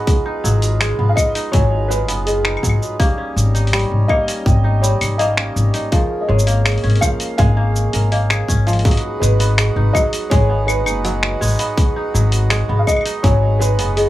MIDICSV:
0, 0, Header, 1, 7, 480
1, 0, Start_track
1, 0, Tempo, 731707
1, 46, Time_signature, 4, 2, 24, 8
1, 9244, End_track
2, 0, Start_track
2, 0, Title_t, "Celesta"
2, 0, Program_c, 0, 8
2, 0, Control_c, 0, 64, 127
2, 0, Note_on_c, 0, 75, 97
2, 0, Note_on_c, 0, 80, 98
2, 45, Note_on_c, 0, 68, 83
2, 160, Note_off_c, 0, 68, 0
2, 526, Note_on_c, 0, 68, 81
2, 640, Note_off_c, 0, 68, 0
2, 1008, Note_off_c, 0, 80, 0
2, 1008, Note_on_c, 0, 80, 91
2, 1076, Note_off_c, 0, 80, 0
2, 1488, Note_off_c, 0, 75, 0
2, 1488, Note_on_c, 0, 75, 104
2, 1601, Note_off_c, 0, 75, 0
2, 1969, Note_on_c, 0, 67, 82
2, 1974, Control_c, 0, 64, 0
2, 2081, Note_off_c, 0, 67, 0
2, 2099, Control_c, 0, 64, 127
2, 2447, Note_on_c, 0, 67, 78
2, 2561, Note_off_c, 0, 67, 0
2, 2928, Note_on_c, 0, 79, 94
2, 2996, Note_off_c, 0, 79, 0
2, 3408, Note_on_c, 0, 75, 103
2, 3521, Note_off_c, 0, 75, 0
2, 3883, Note_on_c, 0, 68, 80
2, 3894, Control_c, 0, 64, 0
2, 3995, Control_c, 0, 64, 127
2, 3999, Note_off_c, 0, 68, 0
2, 4362, Note_on_c, 0, 68, 79
2, 4478, Note_off_c, 0, 68, 0
2, 4845, Note_on_c, 0, 80, 91
2, 4914, Note_off_c, 0, 80, 0
2, 5326, Note_on_c, 0, 75, 105
2, 5440, Note_off_c, 0, 75, 0
2, 5803, Note_on_c, 0, 68, 84
2, 5813, Control_c, 0, 64, 0
2, 5918, Note_off_c, 0, 68, 0
2, 5928, Control_c, 0, 64, 127
2, 6287, Note_on_c, 0, 68, 84
2, 6401, Note_off_c, 0, 68, 0
2, 6764, Note_on_c, 0, 80, 102
2, 6834, Note_off_c, 0, 80, 0
2, 7244, Note_on_c, 0, 75, 97
2, 7359, Note_off_c, 0, 75, 0
2, 7726, Note_on_c, 0, 68, 78
2, 7840, Note_off_c, 0, 68, 0
2, 8209, Note_on_c, 0, 68, 86
2, 8322, Note_off_c, 0, 68, 0
2, 8684, Note_on_c, 0, 80, 103
2, 8753, Note_off_c, 0, 80, 0
2, 9168, Note_on_c, 0, 75, 105
2, 9244, Note_off_c, 0, 75, 0
2, 9244, End_track
3, 0, Start_track
3, 0, Title_t, "Felt piano"
3, 0, Program_c, 1, 0
3, 715, Note_on_c, 1, 77, 76
3, 758, Note_on_c, 1, 75, 104
3, 764, Note_off_c, 1, 77, 0
3, 995, Note_on_c, 1, 73, 111
3, 1010, Note_off_c, 1, 75, 0
3, 1224, Note_off_c, 1, 73, 0
3, 1235, Note_on_c, 1, 71, 96
3, 1290, Note_off_c, 1, 71, 0
3, 1478, Note_on_c, 1, 68, 74
3, 1817, Note_off_c, 1, 68, 0
3, 2678, Note_on_c, 1, 75, 108
3, 3136, Note_off_c, 1, 75, 0
3, 3158, Note_on_c, 1, 73, 91
3, 3213, Note_off_c, 1, 73, 0
3, 3398, Note_on_c, 1, 75, 94
3, 3737, Note_off_c, 1, 75, 0
3, 4074, Note_on_c, 1, 75, 67
3, 4122, Note_on_c, 1, 73, 92
3, 4123, Note_off_c, 1, 75, 0
3, 4598, Note_on_c, 1, 77, 105
3, 4619, Note_off_c, 1, 73, 0
3, 4825, Note_off_c, 1, 77, 0
3, 4839, Note_on_c, 1, 77, 102
3, 5536, Note_off_c, 1, 77, 0
3, 6037, Note_on_c, 1, 71, 89
3, 6516, Note_on_c, 1, 75, 103
3, 6536, Note_off_c, 1, 71, 0
3, 6571, Note_off_c, 1, 75, 0
3, 6755, Note_on_c, 1, 73, 109
3, 6998, Note_on_c, 1, 71, 87
3, 7008, Note_off_c, 1, 73, 0
3, 7456, Note_off_c, 1, 71, 0
3, 8389, Note_on_c, 1, 77, 71
3, 8441, Note_off_c, 1, 77, 0
3, 8444, Note_on_c, 1, 75, 105
3, 8679, Note_on_c, 1, 73, 106
3, 8692, Note_off_c, 1, 75, 0
3, 8917, Note_on_c, 1, 71, 92
3, 8930, Note_off_c, 1, 73, 0
3, 9145, Note_off_c, 1, 71, 0
3, 9159, Note_on_c, 1, 68, 85
3, 9244, Note_off_c, 1, 68, 0
3, 9244, End_track
4, 0, Start_track
4, 0, Title_t, "Harmonium"
4, 0, Program_c, 2, 20
4, 0, Note_on_c, 2, 56, 83
4, 0, Note_on_c, 2, 63, 70
4, 0, Note_on_c, 2, 71, 97
4, 48, Note_on_c, 2, 65, 75
4, 1942, Note_off_c, 2, 71, 0
4, 1944, Note_off_c, 2, 56, 0
4, 1948, Note_off_c, 2, 65, 0
4, 1965, Note_on_c, 2, 55, 83
4, 1967, Note_on_c, 2, 61, 78
4, 3863, Note_off_c, 2, 63, 0
4, 3866, Note_off_c, 2, 55, 0
4, 3888, Note_on_c, 2, 56, 77
4, 3890, Note_on_c, 2, 58, 75
4, 5780, Note_off_c, 2, 61, 0
4, 5788, Note_off_c, 2, 56, 0
4, 5789, Note_off_c, 2, 58, 0
4, 5806, Note_on_c, 2, 63, 74
4, 5808, Note_on_c, 2, 56, 87
4, 5808, Note_on_c, 2, 66, 70
4, 5808, Note_on_c, 2, 71, 87
4, 9244, Note_off_c, 2, 56, 0
4, 9244, Note_off_c, 2, 63, 0
4, 9244, Note_off_c, 2, 66, 0
4, 9244, Note_off_c, 2, 71, 0
4, 9244, End_track
5, 0, Start_track
5, 0, Title_t, "Kora"
5, 0, Program_c, 3, 46
5, 0, Note_on_c, 3, 54, 89
5, 0, Note_on_c, 3, 56, 93
5, 0, Note_on_c, 3, 59, 82
5, 0, Note_on_c, 3, 63, 68
5, 165, Note_off_c, 3, 63, 0
5, 168, Note_on_c, 3, 63, 78
5, 280, Note_off_c, 3, 54, 0
5, 288, Note_on_c, 3, 54, 76
5, 521, Note_off_c, 3, 56, 0
5, 529, Note_on_c, 3, 56, 101
5, 645, Note_off_c, 3, 59, 0
5, 648, Note_on_c, 3, 59, 77
5, 883, Note_off_c, 3, 63, 0
5, 886, Note_on_c, 3, 63, 73
5, 998, Note_off_c, 3, 54, 0
5, 1006, Note_on_c, 3, 54, 81
5, 1240, Note_off_c, 3, 56, 0
5, 1248, Note_on_c, 3, 56, 96
5, 1363, Note_off_c, 3, 59, 0
5, 1366, Note_on_c, 3, 59, 71
5, 1604, Note_off_c, 3, 63, 0
5, 1606, Note_on_c, 3, 63, 73
5, 1716, Note_off_c, 3, 54, 0
5, 1724, Note_on_c, 3, 54, 68
5, 1964, Note_on_c, 3, 58, 101
5, 1999, Note_off_c, 3, 54, 0
5, 1999, Note_off_c, 3, 56, 0
5, 2004, Note_off_c, 3, 59, 0
5, 2084, Note_on_c, 3, 61, 74
5, 2323, Note_off_c, 3, 63, 0
5, 2326, Note_on_c, 3, 63, 78
5, 2447, Note_on_c, 3, 55, 85
5, 2683, Note_off_c, 3, 58, 0
5, 2686, Note_on_c, 3, 58, 95
5, 2802, Note_off_c, 3, 61, 0
5, 2804, Note_on_c, 3, 61, 75
5, 3042, Note_off_c, 3, 63, 0
5, 3045, Note_on_c, 3, 63, 76
5, 3157, Note_off_c, 3, 55, 0
5, 3165, Note_on_c, 3, 55, 78
5, 3403, Note_off_c, 3, 58, 0
5, 3406, Note_on_c, 3, 58, 115
5, 3525, Note_off_c, 3, 61, 0
5, 3527, Note_on_c, 3, 61, 73
5, 3762, Note_off_c, 3, 63, 0
5, 3765, Note_on_c, 3, 63, 78
5, 3883, Note_on_c, 3, 53, 85
5, 3919, Note_off_c, 3, 55, 0
5, 4123, Note_on_c, 3, 56, 100
5, 4240, Note_off_c, 3, 58, 0
5, 4243, Note_on_c, 3, 58, 79
5, 4480, Note_off_c, 3, 61, 0
5, 4483, Note_on_c, 3, 61, 82
5, 4598, Note_off_c, 3, 53, 0
5, 4606, Note_on_c, 3, 53, 69
5, 4829, Note_off_c, 3, 63, 0
5, 4838, Note_off_c, 3, 56, 0
5, 4846, Note_on_c, 3, 56, 101
5, 4962, Note_off_c, 3, 58, 0
5, 4965, Note_on_c, 3, 58, 77
5, 5206, Note_on_c, 3, 70, 75
5, 5323, Note_off_c, 3, 58, 0
5, 5325, Note_on_c, 3, 58, 88
5, 5446, Note_on_c, 3, 68, 77
5, 5564, Note_off_c, 3, 61, 0
5, 5566, Note_on_c, 3, 61, 89
5, 5678, Note_off_c, 3, 53, 0
5, 5686, Note_on_c, 3, 53, 104
5, 5805, Note_on_c, 3, 54, 80
5, 5839, Note_off_c, 3, 53, 0
5, 5839, Note_off_c, 3, 56, 0
5, 6041, Note_off_c, 3, 70, 0
5, 6046, Note_on_c, 3, 56, 97
5, 6162, Note_on_c, 3, 59, 76
5, 6201, Note_off_c, 3, 58, 0
5, 6340, Note_off_c, 3, 68, 0
5, 6405, Note_on_c, 3, 63, 80
5, 6517, Note_off_c, 3, 54, 0
5, 6525, Note_on_c, 3, 54, 74
5, 6707, Note_off_c, 3, 61, 0
5, 6758, Note_off_c, 3, 56, 0
5, 6766, Note_on_c, 3, 56, 99
5, 6882, Note_off_c, 3, 59, 0
5, 6885, Note_on_c, 3, 59, 70
5, 7122, Note_off_c, 3, 63, 0
5, 7125, Note_on_c, 3, 63, 74
5, 7238, Note_off_c, 3, 54, 0
5, 7246, Note_on_c, 3, 54, 86
5, 7477, Note_off_c, 3, 56, 0
5, 7485, Note_on_c, 3, 56, 96
5, 7602, Note_off_c, 3, 59, 0
5, 7604, Note_on_c, 3, 59, 77
5, 7845, Note_off_c, 3, 63, 0
5, 7847, Note_on_c, 3, 63, 75
5, 7957, Note_off_c, 3, 54, 0
5, 7965, Note_on_c, 3, 54, 77
5, 8195, Note_off_c, 3, 56, 0
5, 8202, Note_on_c, 3, 56, 105
5, 8321, Note_off_c, 3, 59, 0
5, 8324, Note_on_c, 3, 59, 75
5, 8561, Note_off_c, 3, 63, 0
5, 8564, Note_on_c, 3, 63, 75
5, 8677, Note_off_c, 3, 54, 0
5, 8685, Note_on_c, 3, 54, 86
5, 8916, Note_off_c, 3, 56, 0
5, 8924, Note_on_c, 3, 56, 99
5, 9045, Note_off_c, 3, 59, 0
5, 9048, Note_on_c, 3, 59, 76
5, 9244, Note_off_c, 3, 54, 0
5, 9244, Note_off_c, 3, 56, 0
5, 9244, Note_off_c, 3, 59, 0
5, 9244, Note_off_c, 3, 63, 0
5, 9244, End_track
6, 0, Start_track
6, 0, Title_t, "Upright bass"
6, 0, Program_c, 4, 32
6, 290, Note_on_c, 4, 32, 93
6, 594, Note_off_c, 4, 32, 0
6, 648, Note_on_c, 4, 32, 95
6, 733, Note_off_c, 4, 32, 0
6, 1008, Note_on_c, 4, 32, 107
6, 1366, Note_off_c, 4, 32, 0
6, 1366, Note_on_c, 4, 30, 81
6, 1672, Note_off_c, 4, 30, 0
6, 1727, Note_on_c, 4, 32, 92
6, 1813, Note_off_c, 4, 32, 0
6, 2207, Note_on_c, 4, 32, 98
6, 2512, Note_off_c, 4, 32, 0
6, 2567, Note_on_c, 4, 32, 98
6, 2652, Note_off_c, 4, 32, 0
6, 2927, Note_on_c, 4, 32, 106
6, 3232, Note_off_c, 4, 32, 0
6, 3290, Note_on_c, 4, 32, 75
6, 3594, Note_off_c, 4, 32, 0
6, 3648, Note_on_c, 4, 32, 96
6, 3733, Note_off_c, 4, 32, 0
6, 4128, Note_on_c, 4, 32, 98
6, 4433, Note_off_c, 4, 32, 0
6, 4489, Note_on_c, 4, 32, 100
6, 4574, Note_off_c, 4, 32, 0
6, 4847, Note_on_c, 4, 32, 110
6, 5152, Note_off_c, 4, 32, 0
6, 5207, Note_on_c, 4, 32, 78
6, 5512, Note_off_c, 4, 32, 0
6, 5567, Note_on_c, 4, 32, 88
6, 5872, Note_off_c, 4, 32, 0
6, 6045, Note_on_c, 4, 32, 100
6, 6351, Note_off_c, 4, 32, 0
6, 6403, Note_on_c, 4, 32, 96
6, 6491, Note_off_c, 4, 32, 0
6, 6767, Note_on_c, 4, 32, 104
6, 7127, Note_off_c, 4, 32, 0
6, 7127, Note_on_c, 4, 30, 81
6, 7432, Note_off_c, 4, 30, 0
6, 7487, Note_on_c, 4, 32, 93
6, 7573, Note_off_c, 4, 32, 0
6, 7967, Note_on_c, 4, 32, 93
6, 8272, Note_off_c, 4, 32, 0
6, 8327, Note_on_c, 4, 32, 94
6, 8413, Note_off_c, 4, 32, 0
6, 8685, Note_on_c, 4, 32, 101
6, 9046, Note_off_c, 4, 32, 0
6, 9046, Note_on_c, 4, 30, 80
6, 9244, Note_off_c, 4, 30, 0
6, 9244, End_track
7, 0, Start_track
7, 0, Title_t, "Drums"
7, 48, Note_on_c, 9, 36, 117
7, 48, Note_on_c, 9, 46, 45
7, 54, Note_on_c, 9, 82, 32
7, 113, Note_off_c, 9, 46, 0
7, 114, Note_off_c, 9, 36, 0
7, 119, Note_off_c, 9, 82, 0
7, 294, Note_on_c, 9, 82, 77
7, 360, Note_off_c, 9, 82, 0
7, 408, Note_on_c, 9, 46, 57
7, 414, Note_on_c, 9, 82, 48
7, 474, Note_off_c, 9, 46, 0
7, 480, Note_off_c, 9, 82, 0
7, 529, Note_on_c, 9, 26, 77
7, 529, Note_on_c, 9, 46, 45
7, 535, Note_on_c, 9, 82, 35
7, 594, Note_off_c, 9, 26, 0
7, 594, Note_off_c, 9, 46, 0
7, 601, Note_off_c, 9, 82, 0
7, 766, Note_on_c, 9, 75, 59
7, 767, Note_on_c, 9, 36, 67
7, 772, Note_on_c, 9, 82, 75
7, 831, Note_off_c, 9, 75, 0
7, 833, Note_off_c, 9, 36, 0
7, 837, Note_off_c, 9, 82, 0
7, 888, Note_on_c, 9, 46, 57
7, 894, Note_on_c, 9, 82, 42
7, 953, Note_off_c, 9, 46, 0
7, 959, Note_off_c, 9, 82, 0
7, 1006, Note_on_c, 9, 46, 44
7, 1007, Note_on_c, 9, 36, 118
7, 1012, Note_on_c, 9, 82, 36
7, 1071, Note_off_c, 9, 46, 0
7, 1073, Note_off_c, 9, 36, 0
7, 1077, Note_off_c, 9, 82, 0
7, 1254, Note_on_c, 9, 82, 85
7, 1320, Note_off_c, 9, 82, 0
7, 1368, Note_on_c, 9, 46, 60
7, 1374, Note_on_c, 9, 82, 43
7, 1433, Note_off_c, 9, 46, 0
7, 1439, Note_off_c, 9, 82, 0
7, 1488, Note_on_c, 9, 46, 46
7, 1494, Note_on_c, 9, 82, 37
7, 1553, Note_off_c, 9, 46, 0
7, 1559, Note_off_c, 9, 82, 0
7, 1605, Note_on_c, 9, 26, 80
7, 1605, Note_on_c, 9, 75, 69
7, 1671, Note_off_c, 9, 26, 0
7, 1671, Note_off_c, 9, 75, 0
7, 1686, Note_on_c, 9, 75, 56
7, 1726, Note_on_c, 9, 36, 59
7, 1732, Note_on_c, 9, 82, 80
7, 1751, Note_off_c, 9, 75, 0
7, 1767, Note_on_c, 9, 75, 48
7, 1792, Note_off_c, 9, 36, 0
7, 1798, Note_off_c, 9, 82, 0
7, 1833, Note_off_c, 9, 75, 0
7, 1853, Note_on_c, 9, 82, 45
7, 1919, Note_off_c, 9, 82, 0
7, 1966, Note_on_c, 9, 36, 121
7, 1968, Note_on_c, 9, 46, 43
7, 1974, Note_on_c, 9, 82, 34
7, 2031, Note_off_c, 9, 36, 0
7, 2033, Note_off_c, 9, 46, 0
7, 2039, Note_off_c, 9, 82, 0
7, 2214, Note_on_c, 9, 82, 75
7, 2279, Note_off_c, 9, 82, 0
7, 2327, Note_on_c, 9, 46, 23
7, 2333, Note_on_c, 9, 82, 47
7, 2393, Note_off_c, 9, 46, 0
7, 2399, Note_off_c, 9, 82, 0
7, 2409, Note_on_c, 9, 46, 34
7, 2448, Note_off_c, 9, 46, 0
7, 2448, Note_on_c, 9, 26, 80
7, 2448, Note_on_c, 9, 46, 42
7, 2454, Note_on_c, 9, 82, 36
7, 2489, Note_off_c, 9, 46, 0
7, 2489, Note_on_c, 9, 46, 42
7, 2514, Note_off_c, 9, 26, 0
7, 2520, Note_off_c, 9, 82, 0
7, 2554, Note_off_c, 9, 46, 0
7, 2686, Note_on_c, 9, 36, 66
7, 2689, Note_on_c, 9, 75, 57
7, 2751, Note_off_c, 9, 36, 0
7, 2755, Note_off_c, 9, 75, 0
7, 2809, Note_on_c, 9, 46, 58
7, 2815, Note_on_c, 9, 82, 48
7, 2874, Note_off_c, 9, 46, 0
7, 2880, Note_off_c, 9, 82, 0
7, 2926, Note_on_c, 9, 36, 124
7, 2934, Note_on_c, 9, 82, 38
7, 2992, Note_off_c, 9, 36, 0
7, 3000, Note_off_c, 9, 82, 0
7, 3173, Note_on_c, 9, 82, 83
7, 3239, Note_off_c, 9, 82, 0
7, 3288, Note_on_c, 9, 46, 55
7, 3288, Note_on_c, 9, 75, 74
7, 3294, Note_on_c, 9, 82, 48
7, 3353, Note_off_c, 9, 46, 0
7, 3353, Note_off_c, 9, 75, 0
7, 3359, Note_off_c, 9, 82, 0
7, 3407, Note_on_c, 9, 46, 42
7, 3413, Note_on_c, 9, 82, 34
7, 3473, Note_off_c, 9, 46, 0
7, 3479, Note_off_c, 9, 82, 0
7, 3526, Note_on_c, 9, 26, 80
7, 3591, Note_off_c, 9, 26, 0
7, 3651, Note_on_c, 9, 82, 86
7, 3717, Note_off_c, 9, 82, 0
7, 3765, Note_on_c, 9, 46, 50
7, 3771, Note_on_c, 9, 82, 49
7, 3830, Note_off_c, 9, 46, 0
7, 3836, Note_off_c, 9, 82, 0
7, 3884, Note_on_c, 9, 46, 45
7, 3886, Note_on_c, 9, 36, 114
7, 3890, Note_on_c, 9, 82, 36
7, 3950, Note_off_c, 9, 46, 0
7, 3951, Note_off_c, 9, 36, 0
7, 3956, Note_off_c, 9, 82, 0
7, 4191, Note_on_c, 9, 82, 70
7, 4244, Note_on_c, 9, 46, 50
7, 4250, Note_off_c, 9, 82, 0
7, 4250, Note_on_c, 9, 82, 46
7, 4310, Note_off_c, 9, 46, 0
7, 4316, Note_off_c, 9, 82, 0
7, 4366, Note_on_c, 9, 26, 84
7, 4366, Note_on_c, 9, 46, 20
7, 4372, Note_on_c, 9, 82, 36
7, 4406, Note_off_c, 9, 46, 0
7, 4406, Note_on_c, 9, 46, 24
7, 4432, Note_off_c, 9, 26, 0
7, 4438, Note_off_c, 9, 82, 0
7, 4446, Note_off_c, 9, 46, 0
7, 4446, Note_on_c, 9, 46, 26
7, 4485, Note_off_c, 9, 46, 0
7, 4485, Note_on_c, 9, 46, 29
7, 4524, Note_off_c, 9, 46, 0
7, 4524, Note_on_c, 9, 46, 32
7, 4563, Note_off_c, 9, 46, 0
7, 4563, Note_on_c, 9, 46, 35
7, 4601, Note_on_c, 9, 75, 60
7, 4606, Note_on_c, 9, 36, 63
7, 4607, Note_on_c, 9, 82, 80
7, 4628, Note_off_c, 9, 46, 0
7, 4667, Note_off_c, 9, 75, 0
7, 4672, Note_off_c, 9, 36, 0
7, 4673, Note_off_c, 9, 82, 0
7, 4723, Note_on_c, 9, 46, 54
7, 4729, Note_on_c, 9, 82, 43
7, 4788, Note_off_c, 9, 46, 0
7, 4794, Note_off_c, 9, 82, 0
7, 4843, Note_on_c, 9, 46, 43
7, 4846, Note_on_c, 9, 36, 127
7, 4849, Note_on_c, 9, 82, 33
7, 4909, Note_off_c, 9, 46, 0
7, 4912, Note_off_c, 9, 36, 0
7, 4915, Note_off_c, 9, 82, 0
7, 5088, Note_on_c, 9, 82, 84
7, 5154, Note_off_c, 9, 82, 0
7, 5204, Note_on_c, 9, 46, 55
7, 5210, Note_on_c, 9, 82, 43
7, 5270, Note_off_c, 9, 46, 0
7, 5276, Note_off_c, 9, 82, 0
7, 5326, Note_on_c, 9, 46, 44
7, 5392, Note_off_c, 9, 46, 0
7, 5446, Note_on_c, 9, 26, 71
7, 5446, Note_on_c, 9, 75, 74
7, 5452, Note_on_c, 9, 82, 33
7, 5511, Note_off_c, 9, 26, 0
7, 5511, Note_off_c, 9, 75, 0
7, 5517, Note_off_c, 9, 82, 0
7, 5566, Note_on_c, 9, 36, 66
7, 5572, Note_on_c, 9, 82, 79
7, 5632, Note_off_c, 9, 36, 0
7, 5638, Note_off_c, 9, 82, 0
7, 5686, Note_on_c, 9, 46, 24
7, 5692, Note_on_c, 9, 82, 45
7, 5728, Note_off_c, 9, 46, 0
7, 5728, Note_on_c, 9, 46, 30
7, 5758, Note_off_c, 9, 82, 0
7, 5767, Note_off_c, 9, 46, 0
7, 5767, Note_on_c, 9, 46, 34
7, 5806, Note_off_c, 9, 46, 0
7, 5806, Note_on_c, 9, 36, 121
7, 5806, Note_on_c, 9, 46, 43
7, 5812, Note_on_c, 9, 82, 30
7, 5847, Note_off_c, 9, 46, 0
7, 5847, Note_on_c, 9, 46, 44
7, 5872, Note_off_c, 9, 36, 0
7, 5878, Note_off_c, 9, 82, 0
7, 5887, Note_off_c, 9, 46, 0
7, 5887, Note_on_c, 9, 46, 42
7, 5952, Note_off_c, 9, 46, 0
7, 6054, Note_on_c, 9, 82, 76
7, 6119, Note_off_c, 9, 82, 0
7, 6167, Note_on_c, 9, 46, 56
7, 6173, Note_on_c, 9, 82, 40
7, 6232, Note_off_c, 9, 46, 0
7, 6238, Note_off_c, 9, 82, 0
7, 6285, Note_on_c, 9, 26, 76
7, 6285, Note_on_c, 9, 46, 45
7, 6291, Note_on_c, 9, 82, 37
7, 6350, Note_off_c, 9, 26, 0
7, 6350, Note_off_c, 9, 46, 0
7, 6356, Note_off_c, 9, 82, 0
7, 6526, Note_on_c, 9, 36, 69
7, 6526, Note_on_c, 9, 75, 59
7, 6532, Note_on_c, 9, 82, 80
7, 6591, Note_off_c, 9, 36, 0
7, 6591, Note_off_c, 9, 75, 0
7, 6597, Note_off_c, 9, 82, 0
7, 6645, Note_on_c, 9, 46, 55
7, 6651, Note_on_c, 9, 82, 43
7, 6710, Note_off_c, 9, 46, 0
7, 6716, Note_off_c, 9, 82, 0
7, 6766, Note_on_c, 9, 36, 123
7, 6766, Note_on_c, 9, 46, 44
7, 6772, Note_on_c, 9, 82, 34
7, 6831, Note_off_c, 9, 36, 0
7, 6831, Note_off_c, 9, 46, 0
7, 6837, Note_off_c, 9, 82, 0
7, 7006, Note_on_c, 9, 75, 84
7, 7013, Note_on_c, 9, 82, 80
7, 7072, Note_off_c, 9, 75, 0
7, 7078, Note_off_c, 9, 82, 0
7, 7126, Note_on_c, 9, 75, 83
7, 7132, Note_on_c, 9, 82, 48
7, 7192, Note_off_c, 9, 75, 0
7, 7198, Note_off_c, 9, 82, 0
7, 7246, Note_on_c, 9, 46, 41
7, 7252, Note_on_c, 9, 82, 34
7, 7312, Note_off_c, 9, 46, 0
7, 7318, Note_off_c, 9, 82, 0
7, 7366, Note_on_c, 9, 26, 71
7, 7431, Note_off_c, 9, 26, 0
7, 7492, Note_on_c, 9, 82, 73
7, 7505, Note_off_c, 9, 82, 0
7, 7505, Note_on_c, 9, 82, 62
7, 7522, Note_off_c, 9, 82, 0
7, 7522, Note_on_c, 9, 82, 48
7, 7536, Note_off_c, 9, 82, 0
7, 7536, Note_on_c, 9, 82, 44
7, 7551, Note_off_c, 9, 82, 0
7, 7551, Note_on_c, 9, 82, 34
7, 7567, Note_off_c, 9, 82, 0
7, 7567, Note_on_c, 9, 82, 27
7, 7582, Note_off_c, 9, 82, 0
7, 7582, Note_on_c, 9, 82, 24
7, 7597, Note_off_c, 9, 82, 0
7, 7597, Note_on_c, 9, 82, 20
7, 7604, Note_on_c, 9, 46, 55
7, 7610, Note_off_c, 9, 82, 0
7, 7610, Note_on_c, 9, 82, 45
7, 7670, Note_off_c, 9, 46, 0
7, 7676, Note_off_c, 9, 82, 0
7, 7725, Note_on_c, 9, 36, 115
7, 7725, Note_on_c, 9, 46, 46
7, 7731, Note_on_c, 9, 82, 31
7, 7790, Note_off_c, 9, 36, 0
7, 7791, Note_off_c, 9, 46, 0
7, 7797, Note_off_c, 9, 82, 0
7, 7970, Note_on_c, 9, 82, 70
7, 8036, Note_off_c, 9, 82, 0
7, 8083, Note_on_c, 9, 46, 57
7, 8089, Note_on_c, 9, 82, 41
7, 8148, Note_off_c, 9, 46, 0
7, 8154, Note_off_c, 9, 82, 0
7, 8202, Note_on_c, 9, 26, 82
7, 8202, Note_on_c, 9, 46, 48
7, 8208, Note_on_c, 9, 82, 34
7, 8268, Note_off_c, 9, 26, 0
7, 8268, Note_off_c, 9, 46, 0
7, 8274, Note_off_c, 9, 82, 0
7, 8444, Note_on_c, 9, 36, 64
7, 8444, Note_on_c, 9, 75, 59
7, 8450, Note_on_c, 9, 82, 77
7, 8472, Note_off_c, 9, 75, 0
7, 8472, Note_on_c, 9, 75, 51
7, 8505, Note_off_c, 9, 75, 0
7, 8505, Note_on_c, 9, 75, 41
7, 8510, Note_off_c, 9, 36, 0
7, 8515, Note_off_c, 9, 82, 0
7, 8534, Note_off_c, 9, 75, 0
7, 8534, Note_on_c, 9, 75, 34
7, 8564, Note_on_c, 9, 46, 58
7, 8570, Note_on_c, 9, 82, 43
7, 8600, Note_off_c, 9, 75, 0
7, 8630, Note_off_c, 9, 46, 0
7, 8636, Note_off_c, 9, 82, 0
7, 8685, Note_on_c, 9, 36, 109
7, 8686, Note_on_c, 9, 46, 44
7, 8692, Note_on_c, 9, 82, 31
7, 8750, Note_off_c, 9, 36, 0
7, 8751, Note_off_c, 9, 46, 0
7, 8757, Note_off_c, 9, 82, 0
7, 8932, Note_on_c, 9, 82, 72
7, 8998, Note_off_c, 9, 82, 0
7, 9045, Note_on_c, 9, 46, 57
7, 9051, Note_on_c, 9, 82, 41
7, 9111, Note_off_c, 9, 46, 0
7, 9117, Note_off_c, 9, 82, 0
7, 9165, Note_on_c, 9, 46, 48
7, 9171, Note_on_c, 9, 82, 32
7, 9230, Note_off_c, 9, 46, 0
7, 9236, Note_off_c, 9, 82, 0
7, 9244, End_track
0, 0, End_of_file